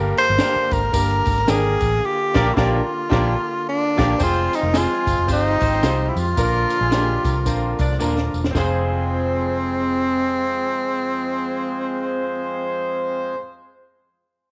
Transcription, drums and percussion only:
0.17 ride, tambourine
0.38 snare, ride, tambourine
0.71 kick, ride, tambourine
0.94 kick, ride, tambourine
1.11 ride
1.26 kick, ride, tambourine
1.38 snare, ride
1.48 snare, ride, tambourine
1.81 kick, ride, tambourine
2.35 kick, snare, crash
2.57 kick, snare
3.12 kick, snare
3.99 kick, snare, crash
4.20 kick, crash, tambourine
4.53 closed hi-hat, tambourine
4.74 snare, closed hi-hat, tambourine
5.07 kick, closed hi-hat, tambourine
5.28 kick, closed hi-hat, tambourine
5.60 kick, closed hi-hat, tambourine
5.73 snare
5.83 snare, closed hi-hat, tambourine
6.17 open hi-hat, tambourine
6.37 kick, closed hi-hat, tambourine
6.70 closed hi-hat, tambourine
6.92 snare, closed hi-hat, tambourine
7.25 kick, closed hi-hat, tambourine
7.46 kick, closed hi-hat, tambourine
7.79 kick, closed hi-hat, tambourine
7.91 snare
8.00 tambourine
8.18 snare
8.34 tambourine
8.44 snare
8.55 kick, snare, tambourine

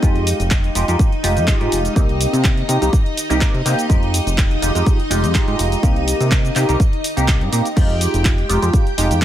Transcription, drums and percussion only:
0.03 kick, closed hi-hat, shaker
0.16 closed hi-hat
0.27 open hi-hat, shaker
0.40 closed hi-hat, shaker
0.51 kick, clap, closed hi-hat, shaker
0.64 closed hi-hat
0.75 open hi-hat, shaker
0.88 closed hi-hat, shaker
0.99 kick, closed hi-hat, shaker
1.12 closed hi-hat
1.24 open hi-hat, shaker
1.37 closed hi-hat, shaker
1.48 kick, clap, closed hi-hat, shaker
1.61 closed hi-hat
1.72 open hi-hat, shaker
1.85 closed hi-hat, shaker
1.96 kick, closed hi-hat, shaker
2.09 closed hi-hat
2.21 open hi-hat, shaker
2.34 closed hi-hat, shaker
2.44 kick, clap, closed hi-hat, shaker
2.58 closed hi-hat
2.69 open hi-hat, shaker
2.82 closed hi-hat, shaker
2.93 kick, closed hi-hat, shaker
3.06 closed hi-hat
3.17 open hi-hat, shaker
3.30 closed hi-hat, shaker
3.41 kick, clap, closed hi-hat, shaker
3.55 closed hi-hat
3.66 open hi-hat, shaker
3.79 closed hi-hat, shaker
3.90 kick, closed hi-hat, shaker
4.03 closed hi-hat
4.14 open hi-hat, shaker
4.27 closed hi-hat, shaker
4.38 kick, clap, closed hi-hat, shaker
4.51 closed hi-hat
4.62 open hi-hat, shaker
4.75 closed hi-hat, shaker
4.87 kick, closed hi-hat, shaker
5.00 closed hi-hat
5.11 open hi-hat, shaker
5.24 closed hi-hat, shaker
5.35 kick, clap, closed hi-hat, shaker
5.48 closed hi-hat
5.59 open hi-hat, shaker
5.72 closed hi-hat, shaker
5.83 kick, closed hi-hat, shaker
5.96 closed hi-hat
6.08 open hi-hat, shaker
6.21 closed hi-hat, shaker
6.31 kick, clap, closed hi-hat, shaker
6.45 closed hi-hat, shaker
6.56 clap, open hi-hat, shaker
6.69 closed hi-hat, shaker
6.80 kick, closed hi-hat, shaker
6.93 closed hi-hat
7.04 open hi-hat, shaker
7.17 closed hi-hat, shaker
7.28 kick, clap, closed hi-hat, shaker
7.41 closed hi-hat
7.53 open hi-hat, shaker
7.65 closed hi-hat, shaker
7.77 kick, closed hi-hat, crash, shaker
7.90 closed hi-hat
8.01 open hi-hat, shaker
8.14 closed hi-hat, shaker
8.25 kick, clap, closed hi-hat, shaker
8.38 closed hi-hat
8.50 open hi-hat, shaker
8.62 closed hi-hat, shaker
8.74 kick, closed hi-hat, shaker
8.87 closed hi-hat
8.98 open hi-hat, shaker
9.11 closed hi-hat, shaker
9.22 clap

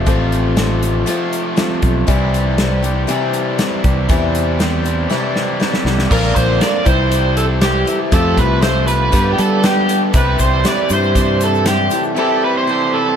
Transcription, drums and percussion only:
0.07 kick, closed hi-hat
0.32 closed hi-hat
0.57 snare, closed hi-hat
0.83 closed hi-hat
1.07 closed hi-hat
1.33 closed hi-hat
1.57 snare, closed hi-hat
1.82 kick, closed hi-hat
2.08 kick, closed hi-hat
2.34 closed hi-hat
2.58 snare, closed hi-hat
2.84 closed hi-hat
3.09 closed hi-hat
3.34 closed hi-hat
3.59 snare, closed hi-hat
3.84 kick, closed hi-hat
4.10 kick, closed hi-hat
4.35 closed hi-hat
4.60 snare, closed hi-hat
4.86 closed hi-hat
5.11 snare
5.36 snare
5.61 snare
5.74 snare
5.86 snare
5.99 snare
6.11 kick, crash
6.36 kick, closed hi-hat
6.61 snare, closed hi-hat
6.86 kick, closed hi-hat
7.12 closed hi-hat
7.37 closed hi-hat
7.62 snare, closed hi-hat
7.87 closed hi-hat
8.12 kick, closed hi-hat
8.37 kick, closed hi-hat
8.62 snare, closed hi-hat
8.88 closed hi-hat
9.13 kick, closed hi-hat
9.38 closed hi-hat
9.64 snare, closed hi-hat
9.89 closed hi-hat
10.14 kick, closed hi-hat, shaker
10.39 kick, closed hi-hat, shaker
10.65 snare, closed hi-hat, shaker
10.90 closed hi-hat, shaker
11.03 shaker
11.15 kick, closed hi-hat, shaker
11.41 closed hi-hat, shaker
11.54 shaker
11.66 snare, closed hi-hat, shaker
11.90 closed hi-hat, shaker
12.03 shaker

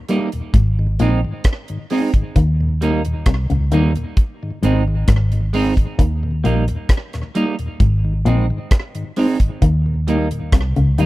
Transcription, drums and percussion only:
0.09 closed hi-hat
0.32 closed hi-hat
0.54 kick, closed hi-hat
0.99 closed hi-hat
1.44 kick, cross-stick, closed hi-hat
1.68 closed hi-hat
1.90 open hi-hat
2.14 kick, closed hi-hat
2.36 kick, closed hi-hat
2.82 closed hi-hat
3.05 closed hi-hat
3.26 kick, cross-stick, closed hi-hat
3.50 closed hi-hat
3.72 closed hi-hat
3.95 closed hi-hat
4.17 kick, closed hi-hat
4.63 closed hi-hat
5.08 kick, cross-stick, closed hi-hat
5.32 closed hi-hat
5.54 open hi-hat
5.77 kick, closed hi-hat
5.99 kick, closed hi-hat
6.45 closed hi-hat
6.68 closed hi-hat
6.89 kick, cross-stick, closed hi-hat
7.13 cross-stick, closed hi-hat
7.35 closed hi-hat
7.59 closed hi-hat
7.80 kick, closed hi-hat
8.26 closed hi-hat
8.71 kick, cross-stick, closed hi-hat
8.95 closed hi-hat
9.16 open hi-hat
9.40 kick, closed hi-hat
9.62 kick, closed hi-hat
10.08 closed hi-hat
10.31 closed hi-hat
10.52 kick, cross-stick, closed hi-hat
10.76 closed hi-hat
10.98 closed hi-hat

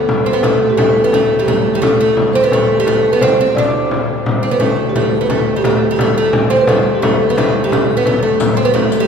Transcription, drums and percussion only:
0.09 frame drum
0.43 frame drum
0.78 frame drum
1.13 frame drum
1.48 frame drum
1.83 frame drum
2.17 frame drum
2.52 frame drum
2.87 frame drum
3.21 frame drum
3.39 frame drum
3.57 frame drum
3.74 frame drum
3.91 frame drum
4.10 frame drum
4.26 frame drum
4.61 frame drum
4.96 frame drum
5.30 frame drum
5.64 frame drum
5.99 frame drum
6.33 frame drum
6.67 frame drum
7.03 frame drum
7.38 frame drum
7.72 frame drum
8.06 frame drum
8.40 riq, frame drum
8.57 riq
8.75 frame drum
8.92 riq

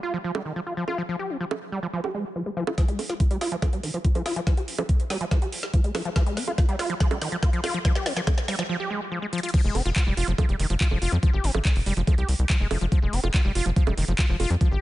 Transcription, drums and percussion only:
0.35 high bongo
0.88 high bongo
1.51 high bongo
2.04 high bongo
2.67 high bongo
2.78 kick, snare, closed hi-hat
2.88 closed hi-hat
2.99 open hi-hat, high bongo
3.10 snare, closed hi-hat
3.20 kick, closed hi-hat
3.31 closed hi-hat
3.41 snare, open hi-hat
3.52 closed hi-hat
3.62 kick, snare, closed hi-hat, high bongo
3.73 closed hi-hat
3.83 open hi-hat
3.94 closed hi-hat
4.05 kick, closed hi-hat
4.15 closed hi-hat, high bongo
4.26 snare, open hi-hat
4.36 closed hi-hat
4.47 kick, snare, closed hi-hat
4.57 closed hi-hat
4.68 open hi-hat
4.79 closed hi-hat, high bongo
4.89 kick, closed hi-hat
5.00 closed hi-hat
5.10 snare, open hi-hat
5.21 closed hi-hat
5.31 kick, snare, closed hi-hat, high bongo
5.42 closed hi-hat
5.52 open hi-hat
5.63 snare
5.74 kick, closed hi-hat
5.84 closed hi-hat
5.95 snare, open hi-hat, high bongo
6.05 closed hi-hat
6.16 kick, snare, closed hi-hat
6.26 closed hi-hat
6.37 snare, open hi-hat
6.48 closed hi-hat, high bongo
6.58 kick, snare, closed hi-hat
6.69 closed hi-hat
6.79 snare, open hi-hat
6.90 closed hi-hat
7.00 kick, snare, closed hi-hat
7.11 closed hi-hat, high bongo
7.22 snare, open hi-hat
7.32 closed hi-hat
7.43 kick, snare, closed hi-hat
7.53 closed hi-hat
7.64 snare, open hi-hat, high bongo
7.74 closed hi-hat
7.85 kick, snare, closed hi-hat
7.95 snare, closed hi-hat
8.06 snare, open hi-hat
8.17 snare, closed hi-hat
8.27 kick, snare, closed hi-hat, high bongo
8.38 snare, closed hi-hat
8.48 snare, open hi-hat
8.59 snare, closed hi-hat
9.33 closed hi-hat
9.38 closed hi-hat
9.43 closed hi-hat
9.49 closed hi-hat
9.54 kick, closed hi-hat, crash
9.75 open hi-hat, high bongo
9.86 closed hi-hat
9.96 kick, clap, closed hi-hat
10.17 open hi-hat
10.28 closed hi-hat
10.38 kick, closed hi-hat, high bongo
10.49 closed hi-hat
10.60 open hi-hat
10.70 closed hi-hat
10.81 kick, clap, closed hi-hat
10.91 high bongo
11.02 open hi-hat
11.12 closed hi-hat
11.23 kick, closed hi-hat
11.44 open hi-hat
11.55 high bongo
11.65 kick, clap, closed hi-hat
11.76 open hi-hat
11.86 open hi-hat
11.97 closed hi-hat
12.07 kick, closed hi-hat, high bongo
12.18 closed hi-hat
12.29 open hi-hat
12.39 closed hi-hat
12.50 kick, clap, closed hi-hat
12.71 open hi-hat, high bongo
12.81 closed hi-hat
12.92 kick, closed hi-hat
13.13 open hi-hat
13.24 closed hi-hat, high bongo
13.34 kick, clap, closed hi-hat
13.55 open hi-hat
13.66 closed hi-hat
13.76 kick, closed hi-hat
13.87 closed hi-hat, high bongo
13.98 open hi-hat
14.08 closed hi-hat
14.19 kick, clap, closed hi-hat
14.40 open hi-hat, high bongo
14.50 closed hi-hat
14.61 kick, closed hi-hat

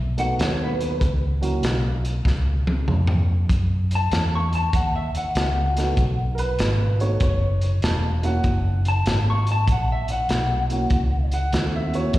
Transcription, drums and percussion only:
0.18 closed hi-hat
0.39 snare, closed hi-hat
0.81 closed hi-hat
1.01 kick, closed hi-hat
1.43 closed hi-hat
1.63 snare, closed hi-hat
2.05 closed hi-hat
2.25 kick, snare
2.67 high tom
2.88 mid tom
3.07 mid tom
3.49 kick, closed hi-hat
3.91 closed hi-hat
4.11 snare, closed hi-hat
4.53 closed hi-hat
4.73 kick, closed hi-hat
5.15 closed hi-hat
5.35 snare, closed hi-hat
5.77 snare, closed hi-hat
5.97 kick, closed hi-hat
6.38 closed hi-hat
6.59 snare, closed hi-hat
7.00 closed hi-hat
7.20 kick, closed hi-hat
7.61 closed hi-hat
7.82 snare, closed hi-hat
8.23 closed hi-hat
8.44 kick, closed hi-hat
8.85 closed hi-hat
9.06 snare, closed hi-hat
9.47 closed hi-hat
9.68 kick, closed hi-hat
10.08 closed hi-hat
10.29 snare, closed hi-hat
10.70 closed hi-hat
10.90 kick, closed hi-hat
11.32 closed hi-hat
11.52 snare, closed hi-hat
11.94 closed hi-hat
12.13 kick, closed hi-hat

